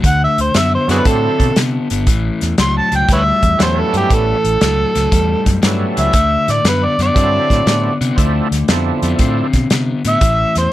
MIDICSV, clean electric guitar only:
0, 0, Header, 1, 2, 480
1, 0, Start_track
1, 0, Tempo, 508906
1, 36, Time_signature, 4, 2, 24, 8
1, 10120, End_track
2, 0, Start_track
2, 0, Title_t, "Clean electric guitar"
2, 0, Program_c, 0, 27
2, 32, Note_on_c, 0, 50, 69
2, 39, Note_on_c, 0, 57, 74
2, 482, Note_off_c, 0, 50, 0
2, 485, Note_off_c, 0, 57, 0
2, 513, Note_on_c, 0, 50, 78
2, 518, Note_on_c, 0, 59, 85
2, 804, Note_off_c, 0, 50, 0
2, 807, Note_off_c, 0, 59, 0
2, 839, Note_on_c, 0, 50, 64
2, 843, Note_on_c, 0, 59, 79
2, 979, Note_off_c, 0, 50, 0
2, 981, Note_off_c, 0, 59, 0
2, 995, Note_on_c, 0, 50, 72
2, 1002, Note_on_c, 0, 60, 88
2, 1443, Note_off_c, 0, 50, 0
2, 1446, Note_off_c, 0, 60, 0
2, 1476, Note_on_c, 0, 50, 72
2, 1484, Note_on_c, 0, 59, 83
2, 1765, Note_off_c, 0, 50, 0
2, 1769, Note_off_c, 0, 59, 0
2, 1799, Note_on_c, 0, 50, 70
2, 1807, Note_on_c, 0, 59, 74
2, 1938, Note_off_c, 0, 50, 0
2, 1942, Note_off_c, 0, 59, 0
2, 1957, Note_on_c, 0, 45, 71
2, 1962, Note_on_c, 0, 52, 82
2, 2403, Note_off_c, 0, 45, 0
2, 2406, Note_off_c, 0, 52, 0
2, 2433, Note_on_c, 0, 45, 86
2, 2436, Note_on_c, 0, 54, 86
2, 2723, Note_off_c, 0, 45, 0
2, 2725, Note_off_c, 0, 54, 0
2, 2750, Note_on_c, 0, 45, 67
2, 2753, Note_on_c, 0, 54, 80
2, 2893, Note_off_c, 0, 45, 0
2, 2895, Note_off_c, 0, 54, 0
2, 2909, Note_on_c, 0, 45, 78
2, 2913, Note_on_c, 0, 55, 83
2, 3359, Note_off_c, 0, 45, 0
2, 3360, Note_off_c, 0, 55, 0
2, 3385, Note_on_c, 0, 45, 78
2, 3388, Note_on_c, 0, 54, 77
2, 3679, Note_off_c, 0, 45, 0
2, 3680, Note_off_c, 0, 54, 0
2, 3706, Note_on_c, 0, 45, 67
2, 3709, Note_on_c, 0, 54, 83
2, 3848, Note_off_c, 0, 45, 0
2, 3852, Note_off_c, 0, 54, 0
2, 3859, Note_on_c, 0, 45, 70
2, 3860, Note_on_c, 0, 52, 74
2, 4313, Note_off_c, 0, 45, 0
2, 4313, Note_off_c, 0, 52, 0
2, 4351, Note_on_c, 0, 45, 74
2, 4356, Note_on_c, 0, 54, 91
2, 4641, Note_off_c, 0, 45, 0
2, 4644, Note_off_c, 0, 54, 0
2, 4667, Note_on_c, 0, 45, 71
2, 4675, Note_on_c, 0, 54, 76
2, 4811, Note_off_c, 0, 45, 0
2, 4815, Note_off_c, 0, 54, 0
2, 4824, Note_on_c, 0, 45, 78
2, 4827, Note_on_c, 0, 55, 85
2, 5275, Note_off_c, 0, 45, 0
2, 5277, Note_off_c, 0, 55, 0
2, 5299, Note_on_c, 0, 45, 78
2, 5305, Note_on_c, 0, 54, 82
2, 5595, Note_off_c, 0, 45, 0
2, 5598, Note_off_c, 0, 54, 0
2, 5630, Note_on_c, 0, 45, 65
2, 5635, Note_on_c, 0, 54, 77
2, 5772, Note_off_c, 0, 45, 0
2, 5775, Note_off_c, 0, 54, 0
2, 5785, Note_on_c, 0, 50, 73
2, 5796, Note_on_c, 0, 57, 74
2, 6236, Note_off_c, 0, 50, 0
2, 6241, Note_off_c, 0, 57, 0
2, 6270, Note_on_c, 0, 50, 79
2, 6276, Note_on_c, 0, 59, 87
2, 6560, Note_off_c, 0, 50, 0
2, 6563, Note_off_c, 0, 59, 0
2, 6600, Note_on_c, 0, 50, 69
2, 6601, Note_on_c, 0, 59, 76
2, 6737, Note_off_c, 0, 50, 0
2, 6738, Note_off_c, 0, 59, 0
2, 6757, Note_on_c, 0, 50, 76
2, 6758, Note_on_c, 0, 60, 85
2, 7202, Note_off_c, 0, 50, 0
2, 7202, Note_off_c, 0, 60, 0
2, 7227, Note_on_c, 0, 50, 73
2, 7235, Note_on_c, 0, 59, 75
2, 7519, Note_off_c, 0, 50, 0
2, 7523, Note_off_c, 0, 59, 0
2, 7554, Note_on_c, 0, 50, 81
2, 7556, Note_on_c, 0, 59, 84
2, 7694, Note_off_c, 0, 50, 0
2, 7695, Note_off_c, 0, 59, 0
2, 7717, Note_on_c, 0, 50, 66
2, 7720, Note_on_c, 0, 57, 82
2, 8162, Note_off_c, 0, 50, 0
2, 8164, Note_off_c, 0, 57, 0
2, 8195, Note_on_c, 0, 50, 76
2, 8196, Note_on_c, 0, 59, 82
2, 8484, Note_off_c, 0, 50, 0
2, 8484, Note_off_c, 0, 59, 0
2, 8517, Note_on_c, 0, 50, 71
2, 8524, Note_on_c, 0, 59, 75
2, 8656, Note_off_c, 0, 50, 0
2, 8660, Note_off_c, 0, 59, 0
2, 8682, Note_on_c, 0, 50, 75
2, 8685, Note_on_c, 0, 60, 95
2, 9125, Note_off_c, 0, 50, 0
2, 9127, Note_off_c, 0, 60, 0
2, 9157, Note_on_c, 0, 50, 73
2, 9161, Note_on_c, 0, 59, 81
2, 9445, Note_off_c, 0, 50, 0
2, 9448, Note_off_c, 0, 59, 0
2, 9475, Note_on_c, 0, 50, 75
2, 9476, Note_on_c, 0, 59, 82
2, 9616, Note_off_c, 0, 50, 0
2, 9617, Note_off_c, 0, 59, 0
2, 9629, Note_on_c, 0, 45, 79
2, 9632, Note_on_c, 0, 52, 88
2, 10080, Note_off_c, 0, 45, 0
2, 10081, Note_off_c, 0, 52, 0
2, 10120, End_track
0, 0, End_of_file